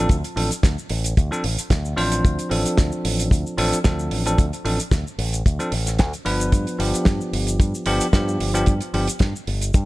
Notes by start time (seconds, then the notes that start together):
Already playing: F3 C4 D4 A4
0.09 D2, kick, closed hi-hat, cabasa
0.24 closed hi-hat, cabasa
0.36 A1 F3 C4 D4 A4, open hi-hat
0.51 muted fingered electric bass stroke, closed hi-hat, cabasa
0.63 D2, kick, snare, closed hi-hat, cabasa
0.78 cabasa
0.90 A1, open hi-hat
1.04 closed hi-hat, cabasa
1.17 D2, kick, closed hi-hat, cabasa
1.31 F3 C4 D4 A4, cabasa
1.44 A1, open hi-hat
1.58 closed hi-hat, cabasa
1.70 D2, kick, snare, closed hi-hat, cabasa
1.85 cabasa
1.96 A1 F3 C4 D4 C5, open hi-hat
2.12 closed hi-hat, cabasa
2.25 D2, kick, closed hi-hat, cabasa
2.39 closed hi-hat, cabasa
2.49 A1 F3 C4 D4 A4, open hi-hat
2.66 muted fingered electric bass stroke, closed hi-hat, cabasa
2.78 D2, kick, snare, closed hi-hat, cabasa
2.92 cabasa
3.05 A1, open hi-hat
3.19 closed hi-hat, cabasa
3.31 D2, kick, closed hi-hat, cabasa
3.46 cabasa
3.58 A1 F3 C4 D4 A4, open hi-hat
3.72 muted fingered electric bass stroke, closed hi-hat, cabasa
3.84 D2 F3 C4 D4 A4, kick, snare, closed hi-hat, cabasa
3.99 cabasa
4.11 A1, open hi-hat
4.25 F3 C4 D4 A4, closed hi-hat, cabasa
4.38 D2, kick, closed hi-hat, cabasa
4.53 closed hi-hat, cabasa
4.65 A1 F3 C4 D4 A4, open hi-hat
4.80 closed hi-hat, cabasa
4.91 D2, kick, snare, closed hi-hat, cabasa
5.07 cabasa
5.18 A1, open hi-hat
5.33 closed hi-hat, cabasa
5.46 D2, kick, closed hi-hat, cabasa
5.59 F3 C4 D4 A4, closed hi-hat, cabasa
5.72 A1, open hi-hat
5.87 snare, closed hi-hat, cabasa
5.99 D2, kick, snare, closed hi-hat, cabasa
6.13 closed hi-hat, cabasa
6.25 G1 F3 B3 D4 B4, open hi-hat
6.40 closed hi-hat, cabasa
6.52 G2, kick, closed hi-hat, cabasa
6.67 closed hi-hat, cabasa
6.78 G1 F3 B3 D4 G4, open hi-hat
6.94 closed hi-hat, cabasa
7.05 G2, kick, snare, closed hi-hat, cabasa
7.21 cabasa
7.33 G1, open hi-hat
7.47 closed hi-hat, cabasa
7.60 G2, kick, closed hi-hat, cabasa
7.75 cabasa
7.86 G1 F3 B3 D4 G4, open hi-hat
8.01 closed hi-hat, cabasa
8.13 G2 F3 B3 D4 G4, kick, snare, closed hi-hat, cabasa
8.28 cabasa
8.40 G1, open hi-hat
8.54 F3 B3 D4 G4, closed hi-hat, cabasa
8.66 G2, kick, closed hi-hat, cabasa
8.81 closed hi-hat, cabasa
8.93 G1 F3 B3 D4 G4, open hi-hat
9.07 muted fingered electric bass stroke, closed hi-hat, cabasa
9.19 G2, kick, snare, closed hi-hat, cabasa
9.36 cabasa
9.47 G1, open hi-hat
9.61 closed hi-hat, cabasa
9.74 G2, kick, closed hi-hat, cabasa